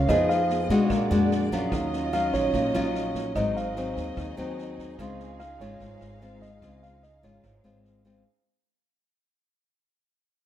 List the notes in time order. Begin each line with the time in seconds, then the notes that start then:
Already playing: C#4 F4 A#4 C#5 F5
0.06 F2 F3 B3 D#4 G#4 B4 D#5, kick, cross-stick, snare
0.12 F5
0.29 F5, snare
0.50 snare
0.70 B2 G#3 D4 F#4, kick, snare
0.87 A#1 A#2 A#3 D4 G#4 A#4 D5, kick, cross-stick, snare
0.93 F#5
1.10 F2 G#3 D4 F#4, snare
1.31 snare
1.52 F#3 C#4 F4, kick, snare
1.69 D#2 D#3 C#4 D#4 F4 D#5, kick, cross-stick, snare
1.73 C#5 F5
1.93 snare
2.13 F#3 C#4 F4 F5, cross-stick, snare
2.33 A#1 C#5, kick, snare
2.54 A#1 A#2, kick, snare
2.74 A#1 F#3 C#4 F4, cross-stick, snare
2.95 snare
3.15 kick, snare
3.32 G#1 G#2 D#4 G#4 D#5, kick, cross-stick, snare
3.36 F#3 C4 D#4 F#4 C5
3.56 F5, snare
3.76 F#3 C4 D#4, snare
3.97 D#2, kick, snare
4.17 D#2 D#3, kick, cross-stick, snare
4.37 D#2 F#3 C4 D#4, snare
4.58 snare
4.78 kick, snare
4.98 C#2 C#3 G#3 C4 F4 G#4 F5 C6, kick, cross-stick, snare
5.19 snare
5.40 F5, cross-stick, snare
5.60 G#1 G#3 F4 C#5, kick, snare
5.80 G#1 G#2, kick, snare
6.01 G#1, cross-stick, snare
6.21 G#3 C4 F4, snare
6.42 D#5, kick, snare
6.62 C#2 C#3 G#3 C4 F4, kick, cross-stick, snare
6.82 F5, snare
7.03 D#5, snare
7.23 G#1 G#3 F4 C#5, kick, snare
7.43 G#1 G#2, kick, cross-stick, snare
7.64 G#1 G#3 C4 F4, snare
7.85 snare
8.04 G#3 C4 C#4 F4 G#4 C5 F5, kick, snare